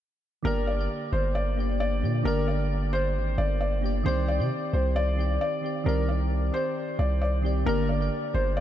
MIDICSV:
0, 0, Header, 1, 4, 480
1, 0, Start_track
1, 0, Key_signature, -2, "minor"
1, 0, Tempo, 451128
1, 478, Time_signature, 4, 2, 24, 8
1, 9155, End_track
2, 0, Start_track
2, 0, Title_t, "Felt piano"
2, 0, Program_c, 0, 0
2, 477, Note_on_c, 0, 70, 107
2, 689, Note_off_c, 0, 70, 0
2, 717, Note_on_c, 0, 74, 79
2, 1168, Note_off_c, 0, 74, 0
2, 1197, Note_on_c, 0, 72, 81
2, 1409, Note_off_c, 0, 72, 0
2, 1436, Note_on_c, 0, 74, 88
2, 1888, Note_off_c, 0, 74, 0
2, 1917, Note_on_c, 0, 74, 87
2, 2369, Note_off_c, 0, 74, 0
2, 2398, Note_on_c, 0, 70, 102
2, 2609, Note_off_c, 0, 70, 0
2, 2638, Note_on_c, 0, 74, 81
2, 3089, Note_off_c, 0, 74, 0
2, 3116, Note_on_c, 0, 72, 90
2, 3568, Note_off_c, 0, 72, 0
2, 3596, Note_on_c, 0, 74, 85
2, 3808, Note_off_c, 0, 74, 0
2, 3837, Note_on_c, 0, 74, 80
2, 4049, Note_off_c, 0, 74, 0
2, 4317, Note_on_c, 0, 72, 103
2, 4528, Note_off_c, 0, 72, 0
2, 4558, Note_on_c, 0, 74, 83
2, 5009, Note_off_c, 0, 74, 0
2, 5037, Note_on_c, 0, 72, 81
2, 5248, Note_off_c, 0, 72, 0
2, 5276, Note_on_c, 0, 74, 98
2, 5728, Note_off_c, 0, 74, 0
2, 5757, Note_on_c, 0, 74, 87
2, 6209, Note_off_c, 0, 74, 0
2, 6236, Note_on_c, 0, 70, 94
2, 6448, Note_off_c, 0, 70, 0
2, 6476, Note_on_c, 0, 74, 77
2, 6928, Note_off_c, 0, 74, 0
2, 6956, Note_on_c, 0, 72, 91
2, 7408, Note_off_c, 0, 72, 0
2, 7437, Note_on_c, 0, 74, 78
2, 7649, Note_off_c, 0, 74, 0
2, 7677, Note_on_c, 0, 74, 78
2, 7888, Note_off_c, 0, 74, 0
2, 8155, Note_on_c, 0, 70, 107
2, 8367, Note_off_c, 0, 70, 0
2, 8395, Note_on_c, 0, 74, 79
2, 8847, Note_off_c, 0, 74, 0
2, 8877, Note_on_c, 0, 72, 82
2, 9088, Note_off_c, 0, 72, 0
2, 9116, Note_on_c, 0, 74, 87
2, 9155, Note_off_c, 0, 74, 0
2, 9155, End_track
3, 0, Start_track
3, 0, Title_t, "Synth keys"
3, 0, Program_c, 1, 88
3, 453, Note_on_c, 1, 50, 98
3, 470, Note_on_c, 1, 58, 103
3, 485, Note_on_c, 1, 67, 95
3, 501, Note_on_c, 1, 74, 111
3, 693, Control_c, 1, 64, 127
3, 740, Note_off_c, 1, 50, 0
3, 748, Note_off_c, 1, 58, 0
3, 756, Note_off_c, 1, 67, 0
3, 764, Note_off_c, 1, 74, 0
3, 809, Note_on_c, 1, 50, 75
3, 825, Note_on_c, 1, 58, 70
3, 841, Note_on_c, 1, 67, 67
3, 858, Note_on_c, 1, 74, 90
3, 1465, Note_off_c, 1, 50, 0
3, 1472, Note_off_c, 1, 58, 0
3, 1481, Note_off_c, 1, 67, 0
3, 1489, Note_off_c, 1, 74, 0
3, 1657, Note_on_c, 1, 50, 70
3, 1673, Note_on_c, 1, 58, 71
3, 1689, Note_on_c, 1, 67, 73
3, 1705, Note_on_c, 1, 74, 81
3, 2034, Note_off_c, 1, 50, 0
3, 2042, Note_off_c, 1, 58, 0
3, 2050, Note_off_c, 1, 67, 0
3, 2058, Note_off_c, 1, 74, 0
3, 2135, Note_on_c, 1, 50, 74
3, 2152, Note_on_c, 1, 58, 65
3, 2167, Note_on_c, 1, 67, 67
3, 2183, Note_on_c, 1, 74, 78
3, 2330, Note_off_c, 1, 50, 0
3, 2338, Note_off_c, 1, 58, 0
3, 2346, Note_off_c, 1, 67, 0
3, 2354, Note_off_c, 1, 74, 0
3, 2372, Note_on_c, 1, 50, 109
3, 2387, Note_on_c, 1, 58, 97
3, 2404, Note_on_c, 1, 67, 90
3, 2419, Note_on_c, 1, 74, 120
3, 2934, Note_off_c, 1, 50, 0
3, 2942, Note_off_c, 1, 58, 0
3, 2950, Note_off_c, 1, 67, 0
3, 2958, Note_off_c, 1, 74, 0
3, 3091, Note_on_c, 1, 50, 75
3, 3107, Note_on_c, 1, 58, 63
3, 3123, Note_on_c, 1, 67, 65
3, 3139, Note_on_c, 1, 74, 77
3, 3837, Note_off_c, 1, 50, 0
3, 3845, Note_off_c, 1, 58, 0
3, 3853, Note_off_c, 1, 67, 0
3, 3861, Note_off_c, 1, 74, 0
3, 4053, Note_on_c, 1, 50, 83
3, 4069, Note_on_c, 1, 58, 69
3, 4086, Note_on_c, 1, 67, 68
3, 4102, Note_on_c, 1, 74, 95
3, 4249, Note_off_c, 1, 50, 0
3, 4257, Note_off_c, 1, 58, 0
3, 4265, Note_off_c, 1, 67, 0
3, 4273, Note_off_c, 1, 74, 0
3, 4293, Note_on_c, 1, 51, 103
3, 4309, Note_on_c, 1, 60, 97
3, 4325, Note_on_c, 1, 67, 97
3, 4329, Control_c, 1, 64, 0
3, 4341, Note_on_c, 1, 74, 115
3, 4526, Control_c, 1, 64, 127
3, 4580, Note_off_c, 1, 51, 0
3, 4588, Note_off_c, 1, 60, 0
3, 4596, Note_off_c, 1, 67, 0
3, 4604, Note_off_c, 1, 74, 0
3, 4649, Note_on_c, 1, 51, 80
3, 4666, Note_on_c, 1, 60, 68
3, 4681, Note_on_c, 1, 67, 74
3, 4698, Note_on_c, 1, 74, 88
3, 5305, Note_off_c, 1, 51, 0
3, 5313, Note_off_c, 1, 60, 0
3, 5321, Note_off_c, 1, 67, 0
3, 5329, Note_off_c, 1, 74, 0
3, 5490, Note_on_c, 1, 51, 72
3, 5506, Note_on_c, 1, 60, 72
3, 5522, Note_on_c, 1, 67, 70
3, 5538, Note_on_c, 1, 74, 83
3, 5870, Note_off_c, 1, 51, 0
3, 5878, Note_off_c, 1, 60, 0
3, 5886, Note_off_c, 1, 67, 0
3, 5894, Note_off_c, 1, 74, 0
3, 5973, Note_on_c, 1, 51, 67
3, 5989, Note_on_c, 1, 60, 67
3, 6005, Note_on_c, 1, 67, 67
3, 6021, Note_on_c, 1, 74, 74
3, 6168, Note_off_c, 1, 51, 0
3, 6176, Note_off_c, 1, 60, 0
3, 6184, Note_off_c, 1, 67, 0
3, 6192, Note_off_c, 1, 74, 0
3, 6214, Note_on_c, 1, 51, 108
3, 6231, Note_on_c, 1, 60, 95
3, 6247, Note_on_c, 1, 67, 82
3, 6262, Note_on_c, 1, 74, 109
3, 6776, Note_off_c, 1, 51, 0
3, 6784, Note_off_c, 1, 60, 0
3, 6792, Note_off_c, 1, 67, 0
3, 6800, Note_off_c, 1, 74, 0
3, 6936, Note_on_c, 1, 51, 72
3, 6952, Note_on_c, 1, 60, 61
3, 6968, Note_on_c, 1, 67, 63
3, 6984, Note_on_c, 1, 74, 75
3, 7679, Note_off_c, 1, 51, 0
3, 7688, Note_off_c, 1, 60, 0
3, 7695, Note_off_c, 1, 67, 0
3, 7703, Note_off_c, 1, 74, 0
3, 7892, Note_on_c, 1, 51, 74
3, 7908, Note_on_c, 1, 60, 72
3, 7924, Note_on_c, 1, 67, 80
3, 7940, Note_on_c, 1, 74, 85
3, 8088, Note_off_c, 1, 51, 0
3, 8096, Note_off_c, 1, 60, 0
3, 8104, Note_off_c, 1, 67, 0
3, 8112, Note_off_c, 1, 74, 0
3, 8132, Note_on_c, 1, 50, 100
3, 8148, Note_on_c, 1, 58, 104
3, 8164, Note_on_c, 1, 67, 96
3, 8173, Control_c, 1, 64, 0
3, 8180, Note_on_c, 1, 74, 109
3, 8335, Control_c, 1, 64, 127
3, 8420, Note_off_c, 1, 50, 0
3, 8428, Note_off_c, 1, 58, 0
3, 8436, Note_off_c, 1, 67, 0
3, 8444, Note_off_c, 1, 74, 0
3, 8487, Note_on_c, 1, 50, 77
3, 8503, Note_on_c, 1, 58, 73
3, 8519, Note_on_c, 1, 67, 66
3, 8535, Note_on_c, 1, 74, 89
3, 9143, Note_off_c, 1, 50, 0
3, 9151, Note_off_c, 1, 58, 0
3, 9155, Note_off_c, 1, 67, 0
3, 9155, Note_off_c, 1, 74, 0
3, 9155, End_track
4, 0, Start_track
4, 0, Title_t, "808-style bass"
4, 0, Program_c, 2, 38
4, 478, Note_on_c, 2, 31, 111
4, 938, Note_off_c, 2, 31, 0
4, 1197, Note_on_c, 2, 31, 109
4, 2157, Note_on_c, 2, 46, 101
4, 2173, Note_off_c, 2, 31, 0
4, 2385, Note_off_c, 2, 46, 0
4, 2397, Note_on_c, 2, 31, 103
4, 3357, Note_on_c, 2, 32, 99
4, 3373, Note_off_c, 2, 31, 0
4, 3585, Note_off_c, 2, 32, 0
4, 3597, Note_on_c, 2, 31, 102
4, 4288, Note_off_c, 2, 31, 0
4, 4316, Note_on_c, 2, 36, 104
4, 4677, Note_on_c, 2, 48, 99
4, 4693, Note_off_c, 2, 36, 0
4, 4791, Note_off_c, 2, 48, 0
4, 5036, Note_on_c, 2, 36, 107
4, 5728, Note_off_c, 2, 36, 0
4, 6236, Note_on_c, 2, 36, 107
4, 6928, Note_off_c, 2, 36, 0
4, 7437, Note_on_c, 2, 36, 106
4, 8128, Note_off_c, 2, 36, 0
4, 8157, Note_on_c, 2, 31, 106
4, 8618, Note_off_c, 2, 31, 0
4, 8877, Note_on_c, 2, 31, 107
4, 9155, Note_off_c, 2, 31, 0
4, 9155, End_track
0, 0, End_of_file